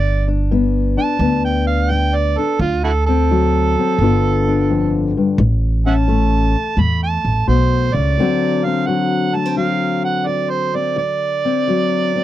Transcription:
Already playing: upright bass G1, steel-string acoustic guitar G2, harmonica D5
0.28 steel-string acoustic guitar D4
0.51 steel-string acoustic guitar G2 B3
0.97 steel-string acoustic guitar D4, harmonica A5
1.19 upright bass D2, steel-string acoustic guitar G2 B3
1.45 harmonica G5
1.67 harmonica F5
1.90 steel-string acoustic guitar G2, harmonica G5
2.15 harmonica D5
2.38 steel-string acoustic guitar D4, harmonica A4
2.59 upright bass D2, steel-string acoustic guitar D2, harmonica F4
2.84 harmonica E4 F#4 A4
3.06 steel-string acoustic guitar C4, harmonica A4
3.31 steel-string acoustic guitar D2 F#3
3.79 steel-string acoustic guitar C4
3.99 upright bass G1, steel-string acoustic guitar G2 D3 B3 D4
4.03 steel-string acoustic guitar F4
4.48 steel-string acoustic guitar D4
4.70 steel-string acoustic guitar F2
5.17 steel-string acoustic guitar G2
5.38 upright bass A1, steel-string acoustic guitar A2
5.86 steel-string acoustic guitar C#4, harmonica E5 F#5 A5
6.08 steel-string acoustic guitar A2 A3
6.77 upright bass E2, steel-string acoustic guitar A2 A3, harmonica B5
7.03 harmonica A5
7.25 upright bass A1
7.48 upright bass B1, steel-string acoustic guitar B2, harmonica C5
7.94 upright bass C#2, steel-string acoustic guitar C#3, harmonica D5
8.18 steel-string acoustic guitar D2 D3 F#3 C4 F#4
8.64 steel-string acoustic guitar C4, harmonica F5
8.86 steel-string acoustic guitar D2 F#3, harmonica F#5
9.35 steel-string acoustic guitar A3, harmonica A5
9.45 steel-string acoustic guitar C4
9.56 steel-string acoustic guitar D2 F#3, harmonica F5
10.04 harmonica F#5
10.27 steel-string acoustic guitar D2, harmonica D5
10.50 harmonica C5
10.75 steel-string acoustic guitar C4, harmonica D5
10.96 steel-string acoustic guitar D2, harmonica D5
11.45 steel-string acoustic guitar C4
11.68 steel-string acoustic guitar D2 F#3
12.16 steel-string acoustic guitar C4

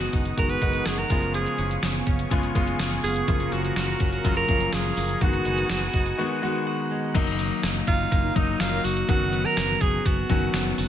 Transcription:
Already playing: grand piano D#3 G#3 B3 F#4, clean electric guitar B3 D#4 F#4, analog synth pad B3 F#5 G#5 D#6, alto saxophone F#4
0.01 closed hi-hat
0.13 fretless electric bass F#1, clean electric guitar D#4, kick, closed hi-hat
0.25 closed hi-hat
0.37 fretless electric bass F#1, grand piano D#3 G#3 B3 F#4, clean electric guitar F#4, alto saxophone A#4, kick, closed hi-hat
0.49 alto saxophone B4, closed hi-hat
0.61 fretless electric bass F#1, grand piano D#3 G#3 B3 F#4, clean electric guitar D#4, kick, closed hi-hat
0.73 closed hi-hat
0.86 fretless electric bass F#1, clean electric guitar F#4, alto saxophone G#4, snare, closed hi-hat
0.98 alto saxophone A#4, closed hi-hat
1.10 fretless electric bass F#1, grand piano C#3 G#3 B3 F4, clean electric guitar F3, analog synth pad F5 C#6, kick, open hi-hat
1.22 closed hi-hat
1.34 clean electric guitar F3, alto saxophone G#4, closed hi-hat
1.46 closed hi-hat
1.58 fretless electric bass F#1, clean electric guitar C#4, closed hi-hat
1.71 closed hi-hat
1.83 fretless electric bass F#1, clean electric guitar G#4, snare, closed hi-hat
1.95 closed hi-hat
2.07 fretless electric bass F#1, clean electric guitar C#4, kick, closed hi-hat
2.19 closed hi-hat
2.30 fretless electric bass F#1, grand piano C#3 G#3 B3 F4, clean electric guitar G#4, kick, closed hi-hat
2.43 closed hi-hat
2.55 fretless electric bass F#1, grand piano C#3 G#3 B3 F4, clean electric guitar C#4, kick, closed hi-hat
2.67 closed hi-hat
2.79 fretless electric bass F#1, clean electric guitar G#4, snare, closed hi-hat
2.92 closed hi-hat
3.04 fretless electric bass F#1, clean electric guitar B3, alto saxophone G#4, open hi-hat
3.16 closed hi-hat
3.27 fretless electric bass F#1, grand piano C#3 F3 A#3 F4, clean electric guitar F3, analog synth pad A#4 A#5, kick, closed hi-hat
3.40 closed hi-hat
3.52 fretless electric bass F#1, clean electric guitar C#4, alto saxophone F#4, closed hi-hat
3.65 alto saxophone F#4, closed hi-hat
3.76 fretless electric bass F#1, clean electric guitar F4, alto saxophone F#4, snare, closed hi-hat, tambourine
3.89 closed hi-hat
4.00 fretless electric bass F#1, clean electric guitar C#4, kick, closed hi-hat
4.12 alto saxophone F#4, closed hi-hat
4.24 fretless electric bass F#1, grand piano C#3 F#3 A#3 F4, clean electric guitar F4, kick, closed hi-hat
4.36 alto saxophone A#4, closed hi-hat
4.48 fretless electric bass F#1, grand piano C#3 F3 A#3 F4, clean electric guitar C#4, kick, closed hi-hat
4.60 closed hi-hat
4.73 fretless electric bass F#1, clean electric guitar F4, alto saxophone G#4, snare, closed hi-hat, tambourine
4.85 closed hi-hat
4.97 fretless electric bass F#1, clean electric guitar A#3, open hi-hat
5.09 closed hi-hat
5.21 fretless electric bass F#1, grand piano D#3 G#3 B3 F#4, clean electric guitar D#3, alto saxophone F#4, analog synth pad B4 G#5 D#6, kick, closed hi-hat
5.33 closed hi-hat
5.45 fretless electric bass F#1, clean electric guitar D#4, closed hi-hat
5.58 closed hi-hat
5.69 fretless electric bass F#1, clean electric guitar F#4, snare, closed hi-hat, tambourine
5.82 closed hi-hat
5.93 fretless electric bass F#1, clean electric guitar D#4, kick, closed hi-hat
6.06 closed hi-hat
6.18 grand piano D#3 G#3 B3 F#4, clean electric guitar F#4
6.42 grand piano D#3 G#3 B3 F#4, clean electric guitar D#4
6.67 clean electric guitar F#4
6.91 clean electric guitar G#3
7.14 fretless electric bass F#1, clean electric guitar D#3, grand piano F#3 A#3 D#4, kick, closed hi-hat, crash
7.39 clean electric guitar D#4, closed hi-hat
7.63 fretless electric bass F#1, clean electric guitar A#3, snare, closed hi-hat, tambourine
7.87 fretless electric bass F#1, clean electric guitar D#4, alto saxophone F4, kick, closed hi-hat
8.12 fretless electric bass F#1, clean electric guitar A#3, kick, closed hi-hat
8.24 analog polysynth F#3 D#4 A#4
8.35 fretless electric bass F#1, grand piano F#3 A#3 D#4, alto saxophone D#4, clean electric guitar D#4, kick, closed hi-hat
8.60 fretless electric bass F#1, analog polysynth F#3 D#4 A#4, clean electric guitar A#3, alto saxophone F4, snare, closed hi-hat, tambourine
8.84 fretless electric bass F#1, clean electric guitar F#4, alto saxophone F#4, open hi-hat
8.97 closed hi-hat
9.08 fretless electric bass F#1, grand piano D#3 F#3 B3 C#4 F#4, clean electric guitar D#3, alto saxophone F#4, kick, closed hi-hat
9.33 clean electric guitar B3, closed hi-hat
9.45 clean electric guitar C#4, alto saxophone A#4
9.57 fretless electric bass F#1, clean electric guitar B3, snare, closed hi-hat, tambourine
9.81 fretless electric bass F#1, clean electric guitar C#4, alto saxophone G#4, kick, closed hi-hat
10.05 fretless electric bass F#1, clean electric guitar B3, alto saxophone F#4, kick, closed hi-hat
10.29 fretless electric bass F#1, grand piano D#3 F#3 B3 C#4 F#4, clean electric guitar C#4, kick, closed hi-hat
10.54 fretless electric bass F#1, clean electric guitar B3, snare, closed hi-hat, tambourine
10.78 fretless electric bass F#1, clean electric guitar F#4, open hi-hat

